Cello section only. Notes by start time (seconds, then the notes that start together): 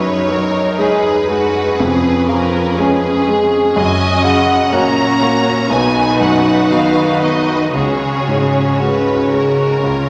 Already playing: F#2
1.79 F2
3.76 F#2
4.71 A#2
5.70 B2
6.70 D#3
7.74 C#3
9.85 C#3